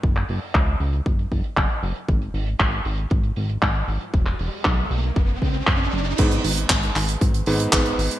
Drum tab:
CC |----------------|----------------|----------------|x---------------|
HH |xxoo-xoxxxoxxxox|xxoxxxoxxxoxxxox|xxooxxoxxxoxxxox|xxoxxxoxxxoxxxox|
CP |-x--x-------x---|----x-------x---|-x--x-------x---|----x-x-----x---|
BD |o---o---o-o-o---|o---o---o---o---|o---o---o-o-o---|o---o---o---o---|